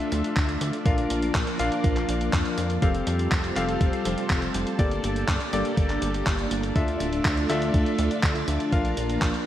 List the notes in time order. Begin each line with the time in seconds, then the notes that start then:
Already playing: A3 D4 F4 A4 D5 E5
0.12 D2, closed hi-hat
0.24 closed hi-hat
0.36 D2, kick, clap, closed hi-hat
0.49 closed hi-hat
0.61 D2, closed hi-hat
0.73 closed hi-hat
0.85 A#1 F3 A#3 D4 F4 A#4 F5, kick, closed hi-hat
0.98 closed hi-hat
1.10 A#1, closed hi-hat
1.23 closed hi-hat
1.35 A#1, kick, clap, closed hi-hat
1.47 closed hi-hat
1.59 A#1 D4 F4 A#4 F5, closed hi-hat
1.72 closed hi-hat
1.84 A#1, kick, closed hi-hat
1.96 clap, closed hi-hat
2.09 A#1, closed hi-hat
2.21 closed hi-hat
2.33 F2, kick, clap, closed hi-hat
2.45 closed hi-hat
2.58 F2, closed hi-hat
2.70 closed hi-hat
2.82 F1 G3 C4 F4 G4 A4 C5 F5, kick, closed hi-hat
2.95 closed hi-hat
3.07 F2, closed hi-hat
3.19 closed hi-hat
3.32 F1, kick, clap, closed hi-hat
3.44 closed hi-hat
3.56 F1 C4 G4 A4 F5, clap, closed hi-hat
3.68 closed hi-hat
3.81 F1, kick, closed hi-hat
3.93 closed hi-hat
4.05 F1, closed hi-hat
4.18 closed hi-hat
4.30 F1, kick, clap, closed hi-hat
4.42 closed hi-hat
4.54 F1, closed hi-hat
4.67 closed hi-hat
4.79 G1 A#3 D4 G4 A4 D5, kick, closed hi-hat
4.91 closed hi-hat
5.04 G1, closed hi-hat
5.16 closed hi-hat
5.28 G1, kick, clap, closed hi-hat
5.41 closed hi-hat
5.53 G1 A#3 G4 A4 D5, closed hi-hat
5.65 closed hi-hat
5.77 G1, kick, closed hi-hat
5.90 clap, closed hi-hat
6.02 G1, closed hi-hat
6.14 closed hi-hat
6.27 G1, kick, clap, closed hi-hat
6.39 closed hi-hat
6.51 G1, closed hi-hat
6.63 closed hi-hat
6.76 D2 A3 D4 F4 A4 E5, kick, closed hi-hat
6.88 closed hi-hat
7.00 D1, closed hi-hat
7.13 closed hi-hat
7.25 D2, kick, clap, closed hi-hat
7.37 closed hi-hat
7.50 D2 D4 F4 A4 E5, clap, closed hi-hat
7.62 closed hi-hat
7.74 D2, kick, closed hi-hat
7.86 closed hi-hat
7.99 D2, closed hi-hat
8.11 closed hi-hat
8.23 D2, kick, clap, closed hi-hat
8.36 closed hi-hat
8.48 D2, closed hi-hat
8.60 closed hi-hat
8.72 A#1 F3 A#3 D4 F4 A#4 F5, kick, closed hi-hat
8.85 closed hi-hat
8.97 A#1, closed hi-hat
9.09 closed hi-hat
9.22 A#1, kick, clap, closed hi-hat
9.34 closed hi-hat